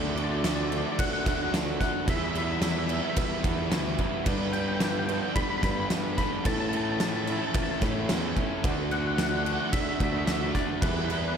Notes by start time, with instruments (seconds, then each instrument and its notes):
Already playing: fingered electric bass D2, distorted electric guitar D3 A3 D4 F#4, overdriven electric guitar F#3
0.16 distorted electric guitar D3 A3 D4 F#4, overdriven electric guitar F#3, clean electric guitar D5, crash
0.24 clean electric guitar D5
0.31 clean electric guitar D5
0.39 clean electric guitar D5
0.44 distorted electric guitar D3 A3 D4 F#4, overdriven electric guitar F#3, clean electric guitar D5, snare, crash
0.56 clean electric guitar D5
0.63 clean electric guitar D5
0.70 distorted electric guitar D3 A3 D4 F#4, overdriven electric guitar F#3, clean electric guitar D5, crash
0.78 clean electric guitar D5
0.86 clean electric guitar D5
0.92 clean electric guitar D5
0.99 distorted electric guitar D3 A3 D4 F#4, overdriven electric guitar F#3, clean electric guitar F#5, kick, crash
1.07 clean electric guitar F#5
1.13 clean electric guitar F#5
1.20 clean electric guitar F#5
1.26 fingered electric bass D2, distorted electric guitar D3 A3 D4 F#4, overdriven electric guitar F#3, clean electric guitar F#5, kick, snare, crash
1.36 clean electric guitar F#5
1.43 clean electric guitar F#5
1.52 fingered electric bass D2, distorted electric guitar D3 A3 D4 F#4, overdriven electric guitar F#3, snare, crash
1.79 distorted electric guitar D3 A3 D4 F#4, overdriven electric guitar F#3, clean electric guitar F#5, kick, snare, crash
2.07 fingered electric bass E2, distorted electric guitar E3 G3 B3 E4, clean electric guitar E5, kick, crash
2.16 clean electric guitar E5
2.24 clean electric guitar E5
2.31 distorted electric guitar E3, clean electric guitar E5
2.35 distorted electric guitar G3 B3 E4, clean electric guitar E5, crash
2.45 clean electric guitar E5
2.52 clean electric guitar E5
2.62 distorted electric guitar E3 G3 B3 E4, clean electric guitar E5, snare, crash
2.71 clean electric guitar E5
2.78 clean electric guitar E5
2.86 distorted electric guitar E3, clean electric guitar E5, crash
2.90 distorted electric guitar G3 B3 E4, clean electric guitar E5
3.03 clean electric guitar E5
3.09 clean electric guitar E5
3.16 distorted electric guitar E3 G3 B3 E4, clean electric guitar E5, kick, crash
3.25 clean electric guitar E5
3.33 clean electric guitar E5
3.43 fingered electric bass E2, distorted electric guitar E3 G3 B3 E4, kick, crash
3.70 fingered electric bass D2, distorted electric guitar E3 G3 B3 E4, snare, crash
3.98 distorted electric guitar E3 G3 B3 E4, kick, crash
4.25 distorted electric guitar G2 D3 G3 B3 D4, fingered electric bass G2, kick, crash
4.52 distorted electric guitar G2 D3 G3 B3 D4, clean electric guitar G5, crash
4.60 clean electric guitar G5
4.68 clean electric guitar G5
4.76 clean electric guitar G5
4.80 distorted electric guitar G2 D3 G3 B3 D4, snare, crash
4.84 clean electric guitar G5
4.91 clean electric guitar G5
4.99 clean electric guitar G5
5.06 distorted electric guitar G2 D3 G3 B3 D4, clean electric guitar G5, crash
5.14 clean electric guitar G5
5.22 clean electric guitar G5
5.30 clean electric guitar G5
5.35 distorted electric guitar G2 D3 G3 B3 D4, clean electric guitar B5, kick, crash
5.42 clean electric guitar B5
5.50 clean electric guitar B5
5.58 clean electric guitar B5
5.63 distorted electric guitar G2 D3 G3 B3 D4, fingered electric bass G2, clean electric guitar B5, kick, snare, crash
5.72 clean electric guitar B5
5.80 clean electric guitar B5
5.89 distorted electric guitar G2 D3 G3 B3 D4, fingered electric bass G2, snare, crash
6.18 distorted electric guitar G2 D3 G3 B3 D4, clean electric guitar B5, kick, snare, crash
6.45 distorted electric guitar A2 E3 A3 C#4 E4, fingered electric bass A2, clean electric guitar A5, kick, crash
6.54 clean electric guitar A5
6.60 clean electric guitar A5
6.69 distorted electric guitar A2, clean electric guitar A5, crash
6.73 distorted electric guitar E3 A3 C#4 E4, clean electric guitar A5
6.83 clean electric guitar A5
6.92 clean electric guitar A5
7.00 distorted electric guitar A2 E3 A3 C#4 E4, clean electric guitar A5, snare, crash
7.09 clean electric guitar A5
7.16 clean electric guitar A5
7.24 distorted electric guitar A2, clean electric guitar A5, crash
7.29 distorted electric guitar E3 A3 C#4 E4, clean electric guitar A5
7.39 clean electric guitar A5
7.47 clean electric guitar A5
7.54 distorted electric guitar A2 E3 A3 C#4 E4, clean electric guitar A5, kick, crash
7.63 clean electric guitar A5
7.71 clean electric guitar A5
7.81 fingered electric bass A2, distorted electric guitar A2 E3 A3 C#4 E4, kick, snare, crash
8.09 fingered electric bass E2, distorted electric guitar A2 E3 A3 C#4 E4, snare, crash
8.36 distorted electric guitar A2 E3 A3 C#4 E4, kick, crash
8.64 fingered electric bass D2, distorted electric guitar D3 A3 D4 F#4, kick, crash
8.91 distorted electric guitar D3 A3 D4 F#4, clean electric guitar F#5, crash
8.98 clean electric guitar F#5
9.07 clean electric guitar F#5
9.14 clean electric guitar F#5
9.18 distorted electric guitar D3 A3 D4 F#4, snare, crash
9.23 clean electric guitar F#5
9.29 clean electric guitar F#5
9.37 clean electric guitar F#5
9.45 distorted electric guitar D3 A3 D4 F#4, clean electric guitar F#5, crash
9.54 clean electric guitar F#5
9.60 clean electric guitar F#5
9.69 distorted electric guitar D3 A3, clean electric guitar E5 F#5, crash
9.73 distorted electric guitar D4 F#4, kick
9.81 clean electric guitar E5
9.89 clean electric guitar E5
9.95 distorted electric guitar D3, clean electric guitar E5
10.00 fingered electric bass D2, distorted electric guitar A3 D4 F#4, clean electric guitar E5, kick, crash
10.12 clean electric guitar E5
10.19 clean electric guitar E5
10.27 fingered electric bass D2, distorted electric guitar D3 A3 D4 F#4, clean electric guitar E5, snare, crash
10.34 clean electric guitar E5
10.43 clean electric guitar E5
10.54 distorted electric guitar D3 A3 D4 F#4, clean electric guitar D5, kick, snare, crash
10.81 fingered electric bass E2, distorted electric guitar E3 G3 B3 E4, clean electric guitar B4, kick, crash
10.90 clean electric guitar B4
10.97 clean electric guitar B4
11.05 clean electric guitar B4
11.09 distorted electric guitar E3 G3 B3 E4, clean electric guitar B4, crash
11.20 clean electric guitar B4
11.27 clean electric guitar B4